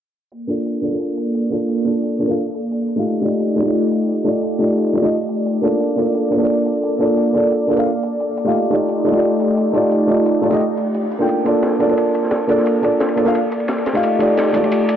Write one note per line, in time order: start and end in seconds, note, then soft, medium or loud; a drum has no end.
0.32 3.03 A#3 medium
0.32 3.03 A4 medium
0.32 3.03 D5 medium
0.32 closed hi-hat medium
0.47 0.80 A#3 medium
0.47 0.81 D4 medium
0.47 0.81 F4 medium
0.47 0.82 A4 medium
0.47 0.82 D5 medium
0.47 closed hi-hat medium
0.66 closed hi-hat medium
0.81 0.87 A#3 medium
0.81 0.89 D4 medium
0.81 0.90 F4 medium
0.81 0.91 A4 medium
0.81 0.91 D5 medium
0.81 closed hi-hat medium
0.89 1.48 A#3 medium
0.89 1.49 D4 medium
0.89 1.50 F4 medium
0.93 1.50 A4 medium
0.93 1.51 D5 medium
1.00 closed hi-hat medium
1.17 closed hi-hat medium
1.34 closed hi-hat medium
1.50 1.83 A#3 medium
1.50 1.84 D4 medium
1.50 1.84 F4 medium
1.50 1.84 A4 medium
1.50 1.85 D5 medium
1.50 closed hi-hat medium
1.69 closed hi-hat medium
1.84 2.17 A#3 medium
1.84 2.18 D4 medium
1.84 2.18 F4 medium
1.84 2.19 A4 medium
1.84 2.19 D5 medium
1.84 closed hi-hat medium
2.03 closed hi-hat medium
2.19 2.26 A#3 medium
2.19 2.27 D4 medium
2.19 2.27 F4 medium
2.19 2.27 A4 medium
2.19 2.28 D5 medium
2.19 closed hi-hat medium
2.27 2.38 A#3 medium
2.27 2.39 D4 medium
2.27 2.39 F4 medium
2.27 2.40 A4 medium
2.27 2.40 F5 medium
2.37 closed hi-hat medium
2.54 closed hi-hat medium
2.72 closed hi-hat medium
2.89 closed hi-hat medium
2.96 3.20 A3 medium
2.96 3.21 D#4 medium
2.96 3.21 F4 medium
2.96 3.22 G4 medium
2.96 3.22 F5 medium
3.06 5.78 A3 medium
3.06 5.78 D#4 medium
3.06 5.78 F4 medium
3.06 5.78 G4 medium
3.06 11.25 D5 medium
3.06 closed hi-hat medium
3.22 3.54 A3 medium
3.22 3.55 D#4 medium
3.22 3.55 F4 medium
3.22 3.56 G4 medium
3.22 3.56 D5 medium
3.22 closed hi-hat medium
3.40 closed hi-hat medium
3.56 3.61 A3 medium
3.56 3.63 D#4 medium
3.56 3.65 F4 medium
3.56 3.65 G4 medium
3.56 3.66 D5 medium
3.56 closed hi-hat medium
3.63 4.22 A3 medium
3.63 4.23 D#4 medium
3.63 4.24 F4 medium
3.68 4.25 G4 medium
3.68 4.26 D5 medium
3.74 closed hi-hat medium
3.92 closed hi-hat medium
4.09 closed hi-hat medium
4.24 4.57 A3 medium
4.24 4.58 D#4 medium
4.24 4.58 F4 medium
4.24 4.59 G4 medium
4.24 4.59 D5 medium
4.24 closed hi-hat medium
4.43 closed hi-hat medium
4.59 4.92 A3 medium
4.59 4.92 D#4 medium
4.59 4.93 F4 medium
4.59 4.93 G4 medium
4.59 4.93 D5 medium
4.59 closed hi-hat medium
4.77 closed hi-hat medium
4.93 5.00 A3 medium
4.93 5.01 D#4 medium
4.93 5.01 F4 medium
4.93 5.02 G4 medium
4.93 5.02 D5 medium
4.93 closed hi-hat medium
5.02 5.13 A3 medium
5.02 5.13 D#4 medium
5.02 5.14 F4 medium
5.02 5.14 G4 medium
5.02 5.14 D#5 medium
5.12 closed hi-hat medium
5.29 closed hi-hat medium
5.46 closed hi-hat medium
5.62 5.94 A#3 medium
5.62 5.95 D4 medium
5.62 5.95 F4 medium
5.62 5.96 A4 medium
5.62 5.96 D5 medium
5.62 closed hi-hat medium
5.80 8.52 A#3 medium
5.80 8.52 A4 medium
5.80 closed hi-hat medium
5.96 6.29 A#3 medium
5.96 6.29 D4 medium
5.96 6.30 F4 medium
5.96 6.30 A4 medium
5.96 6.31 D5 medium
5.96 closed hi-hat medium
6.14 closed hi-hat medium
6.30 6.36 A#3 medium
6.30 6.37 D4 medium
6.30 6.39 F4 medium
6.30 6.39 A4 medium
6.30 6.40 D5 medium
6.30 closed hi-hat medium
6.37 6.97 A#3 medium
6.37 6.98 D4 medium
6.37 6.98 F4 medium
6.42 6.99 A4 medium
6.42 7.00 D5 medium
6.49 closed hi-hat medium
6.66 closed hi-hat medium
6.83 closed hi-hat medium
6.99 7.32 A#3 medium
6.99 7.32 D4 medium
6.99 7.33 F4 medium
6.99 7.33 A4 medium
6.99 7.33 D5 medium
6.99 closed hi-hat medium
7.17 closed hi-hat medium
7.33 7.66 A#3 medium
7.33 7.67 D4 medium
7.33 7.67 F4 medium
7.33 7.67 A4 medium
7.33 7.68 D5 medium
7.33 closed hi-hat medium
7.52 closed hi-hat medium
7.67 7.74 A#3 medium
7.67 7.75 D4 medium
7.67 7.76 F4 medium
7.67 7.76 A4 medium
7.67 7.76 D5 medium
7.67 closed hi-hat medium
7.76 7.87 A#3 medium
7.76 7.87 D4 medium
7.76 7.88 F4 medium
7.76 7.88 A4 medium
7.76 7.88 F5 loud
7.86 closed hi-hat medium
8.03 closed hi-hat medium
8.20 closed hi-hat medium
8.37 closed hi-hat medium
8.45 8.69 A3 medium
8.45 8.69 D#4 medium
8.45 8.70 F4 medium
8.45 8.70 G4 medium
8.45 8.71 F5 medium
8.54 11.26 A3 medium
8.54 11.26 D#4 medium
8.54 11.26 F4 medium
8.54 11.26 G4 medium
8.54 closed hi-hat medium
8.70 9.03 A3 medium
8.70 9.04 D#4 medium
8.70 9.04 F4 medium
8.70 9.04 G4 medium
8.70 9.05 D5 medium
8.70 closed hi-hat medium
8.89 closed hi-hat medium
9.04 9.10 A3 medium
9.04 9.12 D#4 medium
9.04 9.13 F4 medium
9.04 9.14 G4 medium
9.04 9.14 D5 medium
9.04 closed hi-hat medium
9.11 9.71 A3 medium
9.11 9.72 D#4 medium
9.11 9.73 F4 medium
9.16 9.73 G4 medium
9.16 9.74 D5 medium
9.23 closed hi-hat medium
9.40 closed hi-hat medium
9.57 closed hi-hat medium
9.73 10.06 A3 medium
9.73 10.06 D#4 medium
9.73 10.07 F4 medium
9.73 10.07 G4 medium
9.73 10.08 D5 medium
9.73 closed hi-hat medium
9.92 closed hi-hat medium
10.07 10.40 A3 medium
10.07 10.41 D#4 medium
10.07 10.41 F4 medium
10.07 10.42 G4 medium
10.07 10.42 D5 medium
10.07 closed hi-hat medium
10.26 closed hi-hat medium
10.42 10.49 A3 medium
10.42 10.49 D#4 medium
10.42 10.50 F4 medium
10.42 10.50 G4 medium
10.42 10.51 D5 medium
10.42 closed hi-hat medium
10.50 10.61 A3 medium
10.50 10.62 D#4 medium
10.50 10.62 F4 medium
10.50 10.62 G4 medium
10.50 10.63 D#5 loud
10.60 closed hi-hat medium
10.60 reverse cymbal medium
10.77 closed hi-hat medium
10.94 closed hi-hat medium
11.12 closed hi-hat medium
11.19 11.43 A#3 medium
11.19 11.44 D4 medium
11.19 11.44 F4 medium
11.19 11.44 A4 medium
11.19 11.45 G5 medium
11.29 14.00 A#3 medium
11.29 14.00 A4 medium
11.29 14.96 D5 medium
11.29 closed hi-hat medium
11.29 ride medium
11.44 11.77 A#3 medium
11.44 11.78 D4 medium
11.44 11.78 F4 medium
11.44 11.79 A4 medium
11.44 11.79 D5 medium
11.44 closed hi-hat medium
11.44 ride medium
11.62 snare loud
11.62 closed hi-hat medium
11.62 ride medium
11.71 snare soft
11.79 11.84 A#3 medium
11.79 11.86 D4 medium
11.79 11.87 F4 medium
11.79 11.88 A4 medium
11.79 11.88 D5 medium
11.79 closed hi-hat medium
11.79 ride medium
11.86 12.45 A#3 medium
11.86 12.46 D4 medium
11.86 12.47 F4 medium
11.86 ride soft
11.90 12.48 A4 medium
11.90 12.48 D5 medium
11.97 closed hi-hat medium
11.97 ride medium
12.14 closed hi-hat medium
12.14 ride medium
12.23 snare soft
12.31 snare loud
12.31 closed hi-hat medium
12.31 ride medium
12.47 12.80 A#3 medium
12.47 12.81 D4 medium
12.47 12.81 F4 medium
12.47 12.82 A4 medium
12.47 12.82 D5 medium
12.47 closed hi-hat medium
12.47 ride medium
12.57 snare soft
12.66 closed hi-hat medium
12.66 ride medium
12.82 13.14 A#3 medium
12.82 13.15 D4 medium
12.82 13.15 F4 medium
12.82 13.16 A4 medium
12.82 13.16 D5 medium
12.82 closed hi-hat medium
12.82 ride medium
13.00 snare loud
13.00 closed hi-hat medium
13.00 ride medium
13.08 ride soft
13.16 13.23 A#3 medium
13.16 13.24 D4 medium
13.16 13.24 F4 medium
13.16 13.24 A4 medium
13.16 13.25 D5 medium
13.16 closed hi-hat medium
13.16 ride medium
13.25 13.36 A#3 medium
13.25 13.36 D4 medium
13.25 13.36 F4 medium
13.25 13.37 A4 medium
13.25 13.37 F5 loud
13.25 snare soft
13.35 closed hi-hat medium
13.35 ride medium
13.52 closed hi-hat medium
13.52 ride medium
13.60 ride soft
13.68 snare loud
13.68 closed hi-hat medium
13.68 ride medium
13.78 ride soft
13.86 snare loud
13.86 closed hi-hat medium
13.86 ride medium
13.93 14.17 A3 medium
13.93 14.18 D#4 medium
13.93 14.18 F4 medium
13.93 14.19 G4 medium
13.93 14.19 F5 medium
13.93 snare medium
13.93 ride medium
14.03 14.96 A3 medium
14.03 14.96 D#4 medium
14.03 14.96 F4 medium
14.03 14.96 G4 medium
14.03 closed hi-hat medium
14.03 ride medium
14.19 14.51 A3 medium
14.19 14.52 D#4 medium
14.19 14.53 F4 medium
14.19 14.53 G4 medium
14.19 14.53 D5 medium
14.19 closed hi-hat medium
14.19 ride medium
14.37 snare medium
14.37 closed hi-hat medium
14.37 ride medium
14.46 snare soft
14.53 14.59 A3 medium
14.53 14.60 D#4 medium
14.53 14.62 F4 medium
14.53 14.62 G4 medium
14.53 14.63 D5 medium
14.53 closed hi-hat medium
14.53 ride medium
14.60 14.96 A3 medium
14.60 14.96 D#4 medium
14.60 14.96 F4 medium
14.60 ride soft
14.65 14.96 G4 medium
14.65 14.96 D5 medium
14.72 closed hi-hat medium
14.72 ride medium
14.89 closed hi-hat medium
14.89 ride medium